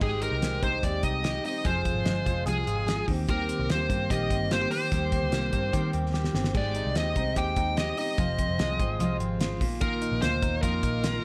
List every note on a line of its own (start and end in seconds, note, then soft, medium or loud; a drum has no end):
0.01 0.28 G#1 medium
0.01 0.42 G#3 medium
0.01 0.43 C4 medium
0.01 0.42 D#4 medium
0.01 0.43 G4 medium
0.01 0.23 G#4 medium
0.01 kick loud
0.01 crash medium
0.21 0.62 D#4 medium
0.21 0.63 A#4 medium
0.21 closed hi-hat medium
0.31 0.80 C2 medium
0.42 0.63 G#3 medium
0.42 0.63 C4 medium
0.42 0.63 D#4 medium
0.42 0.61 G4 medium
0.42 snare medium
0.42 closed hi-hat medium
0.62 0.83 C4 soft
0.62 0.83 D#4 soft
0.62 0.83 G4 soft
0.62 0.84 C5 medium
0.62 kick medium
0.62 closed hi-hat medium
0.83 1.00 D#2 medium
0.83 1.22 G#3 medium
0.83 1.24 C4 medium
0.83 1.24 D#4 medium
0.83 1.25 G4 medium
0.83 1.04 D5 medium
0.83 kick medium
0.83 closed hi-hat medium
1.03 1.38 C2 medium
1.03 1.43 D#4 soft
1.03 1.42 D#5 loud
1.03 kick medium
1.03 closed hi-hat medium
1.23 1.44 G#3 medium
1.23 1.44 C4 medium
1.23 1.44 D#4 medium
1.23 1.43 G4 medium
1.23 snare medium
1.23 closed hi-hat medium
1.44 1.66 C4 soft
1.44 1.65 D#4 soft
1.44 1.64 G4 soft
1.44 1.66 D#5 medium
1.44 open hi-hat medium
1.65 1.91 F1 loud
1.65 2.06 F2 medium
1.65 2.06 C3 medium
1.65 2.04 F3 medium
1.65 2.06 G#3 medium
1.65 2.07 F4 medium
1.65 2.07 G#4 medium
1.65 2.43 C5 medium
1.65 kick loud
1.65 closed hi-hat loud
1.85 2.25 F4 medium
1.85 kick medium
1.85 closed hi-hat medium
1.94 2.03 G#1 medium
2.05 2.23 G1 medium
2.05 2.26 F3 medium
2.05 2.27 G#3 medium
2.05 2.26 F4 medium
2.05 2.25 G#4 medium
2.05 snare medium
2.05 closed hi-hat medium
2.26 2.44 F1 medium
2.26 2.45 F3 soft
2.26 2.46 G#3 soft
2.26 2.47 F4 medium
2.26 2.46 G#4 medium
2.26 kick medium
2.26 closed hi-hat medium
2.46 2.64 C2 medium
2.46 2.87 F2 medium
2.46 2.87 C3 medium
2.46 2.85 F3 medium
2.46 2.87 G#3 medium
2.46 2.88 F4 medium
2.46 2.88 G#4 medium
2.46 3.05 G#4 medium
2.46 closed hi-hat medium
2.67 3.02 G#1 medium
2.67 3.12 F4 medium
2.67 closed hi-hat medium
2.86 3.07 F3 medium
2.86 3.08 G#3 medium
2.86 3.08 F4 medium
2.86 3.08 G#4 medium
2.86 snare loud
2.86 closed hi-hat medium
3.08 3.51 D#2 medium
3.08 3.28 D#3 medium
3.08 3.28 A#3 soft
3.08 3.28 C4 soft
3.08 3.28 G4 medium
3.08 kick medium
3.08 open hi-hat medium
3.28 4.09 D#3 medium
3.28 3.69 G3 medium
3.28 3.69 A#3 medium
3.28 3.71 C4 medium
3.28 3.72 G4 medium
3.28 3.71 A#4 medium
3.28 kick loud
3.28 closed hi-hat medium
3.49 3.89 C4 medium
3.49 closed hi-hat medium
3.59 3.68 C2 medium
3.69 3.87 D#2 medium
3.69 3.89 G3 soft
3.69 3.90 A#3 medium
3.69 3.90 C4 medium
3.69 3.88 G4 medium
3.69 4.12 C5 medium
3.69 snare loud
3.69 closed hi-hat medium
3.90 4.07 G2 medium
3.90 4.09 A#3 soft
3.90 4.10 C4 soft
3.90 4.10 G4 soft
3.90 kick medium
3.90 closed hi-hat medium
4.10 4.27 A#1 medium
4.10 4.91 D#3 medium
4.10 4.50 G3 medium
4.10 4.50 A#3 medium
4.10 4.52 C4 medium
4.10 4.53 G4 medium
4.10 4.52 D#5 medium
4.10 kick medium
4.10 closed hi-hat medium
4.30 4.65 G1 medium
4.30 4.70 C4 medium
4.30 kick medium
4.30 closed hi-hat medium
4.50 4.71 G3 medium
4.50 4.71 A#3 medium
4.50 4.72 C4 medium
4.50 4.61 F4 medium
4.50 4.70 G4 medium
4.50 4.71 C5 medium
4.50 snare medium
4.50 closed hi-hat medium
4.61 4.91 G4 medium
4.71 4.91 A#3 soft
4.71 4.91 C4 soft
4.71 4.92 G4 soft
4.71 5.90 C5 medium
4.71 open hi-hat medium
4.91 5.18 D#2 loud
4.91 5.73 D#3 medium
4.91 5.31 G3 medium
4.91 5.31 A#3 medium
4.91 5.34 C4 medium
4.91 5.35 G4 medium
4.91 kick loud
4.91 closed hi-hat medium
5.12 5.53 C4 medium
5.12 kick medium
5.12 closed hi-hat medium
5.23 5.32 D2 medium
5.31 5.50 C2 medium
5.31 5.52 G3 medium
5.31 5.53 A#3 medium
5.31 5.53 C4 medium
5.31 5.51 G4 medium
5.31 snare medium
5.31 closed hi-hat medium
5.52 5.70 G2 medium
5.52 5.73 A#3 soft
5.52 5.73 C4 soft
5.52 5.73 G4 medium
5.52 kick medium
5.52 closed hi-hat medium
5.73 5.90 D#3 loud
5.73 8.17 D#3 medium
5.73 6.12 G3 medium
5.73 6.12 A#3 medium
5.73 6.14 C4 medium
5.73 6.15 G4 medium
5.73 kick medium
5.73 closed hi-hat medium
5.93 6.28 D#2 medium
5.93 6.35 C4 medium
5.93 closed hi-hat medium
6.12 6.34 G3 medium
6.12 6.34 A#3 medium
6.12 6.34 C4 medium
6.12 6.32 G4 medium
6.12 snare medium
6.24 snare medium
6.33 6.52 G1 medium
6.33 6.55 A#3 soft
6.33 6.54 C4 soft
6.33 6.54 G4 medium
6.33 snare medium
6.44 snare medium
6.54 6.81 G#1 medium
6.54 6.94 G#3 medium
6.54 6.95 C4 medium
6.54 6.96 D#4 medium
6.54 6.97 G4 medium
6.54 6.97 D5 medium
6.54 kick loud
6.54 crash medium
6.75 7.15 D#4 medium
6.75 closed hi-hat medium
6.85 6.94 C2 medium
6.95 7.13 D#2 medium
6.95 7.16 G#3 medium
6.95 7.16 C4 medium
6.95 7.16 D#4 medium
6.95 7.15 G4 medium
6.95 7.39 D#5 medium
6.95 snare medium
6.95 closed hi-hat medium
7.16 7.33 C2 medium
7.16 7.35 C4 soft
7.16 7.36 D#4 soft
7.16 7.36 G4 soft
7.16 kick medium
7.16 closed hi-hat medium
7.35 7.54 D#2 medium
7.35 7.75 G#3 medium
7.35 7.76 C4 medium
7.35 7.77 D#4 medium
7.35 7.78 G4 medium
7.35 7.75 G5 medium
7.35 kick medium
7.35 closed hi-hat medium
7.56 7.91 D#2 medium
7.56 7.97 D#4 medium
7.56 kick medium
7.56 closed hi-hat medium
7.76 7.97 G#3 medium
7.76 7.97 C4 medium
7.76 7.97 D#4 medium
7.76 7.96 G4 medium
7.76 7.96 D#5 medium
7.76 snare loud
7.76 closed hi-hat medium
7.97 8.18 C4 soft
7.97 8.19 D#4 soft
7.97 8.18 G4 soft
7.97 9.16 D#5 medium
7.97 open hi-hat medium
8.18 8.44 F1 loud
8.18 8.59 F2 medium
8.18 8.59 C3 medium
8.18 8.58 F3 medium
8.18 8.59 G#3 medium
8.18 8.59 C4 medium
8.18 8.61 F4 medium
8.18 kick loud
8.18 closed hi-hat medium
8.38 8.79 C4 medium
8.38 kick medium
8.38 closed hi-hat medium
8.49 8.57 F1 medium
8.58 8.76 C2 medium
8.58 8.79 F3 medium
8.58 8.80 G#3 medium
8.58 8.79 C4 medium
8.58 8.79 F4 medium
8.58 snare loud
8.58 closed hi-hat medium
8.79 8.97 G#1 medium
8.79 9.00 F3 soft
8.79 9.00 G#3 medium
8.79 9.00 C4 soft
8.79 9.00 F4 medium
8.79 kick medium
8.79 closed hi-hat medium
8.99 9.17 C2 medium
8.99 9.41 F2 medium
8.99 9.41 C3 medium
8.99 9.39 F3 medium
8.99 9.40 G#3 medium
8.99 9.40 C4 medium
8.99 9.42 F4 medium
8.99 closed hi-hat medium
9.19 9.61 G#1 medium
9.19 9.65 C4 medium
9.19 closed hi-hat medium
9.39 9.60 F3 medium
9.39 9.61 G#3 medium
9.39 9.61 C4 medium
9.39 9.59 F4 medium
9.39 snare medium
9.39 closed hi-hat medium
9.60 10.04 A#1 medium
9.60 9.80 A#2 medium
9.60 9.80 A#3 soft
9.60 9.80 D#4 soft
9.60 9.81 F4 medium
9.60 kick medium
9.60 open hi-hat medium
9.80 10.22 A#2 medium
9.80 10.21 D#3 medium
9.80 10.22 A#3 medium
9.80 10.23 D#4 medium
9.80 10.23 F4 medium
9.80 10.22 A#4 medium
9.80 kick loud
9.80 closed hi-hat loud
10.02 10.42 D#4 medium
10.02 closed hi-hat medium
10.12 10.20 A#1 medium
10.21 10.40 D2 medium
10.21 10.63 D#3 medium
10.21 10.63 A#3 medium
10.21 10.64 D#4 medium
10.21 10.64 F4 medium
10.21 10.62 C5 medium
10.21 snare loud
10.21 closed hi-hat medium
10.42 10.60 D#2 medium
10.42 10.83 D#4 medium
10.42 kick medium
10.42 closed hi-hat medium
10.62 10.80 F2 loud
10.62 11.04 A#2 medium
10.62 11.04 D#3 medium
10.62 11.05 A#3 medium
10.62 11.06 D#4 medium
10.62 11.07 F4 medium
10.62 11.24 A#4 medium
10.62 kick medium
10.62 closed hi-hat medium
10.83 11.18 A#1 medium
10.83 11.24 D#4 medium
10.83 kick medium
10.83 closed hi-hat medium
11.04 11.24 D#3 medium
11.04 11.24 A#3 medium
11.04 11.24 D#4 medium
11.04 11.24 F4 medium
11.04 snare loud
11.04 closed hi-hat medium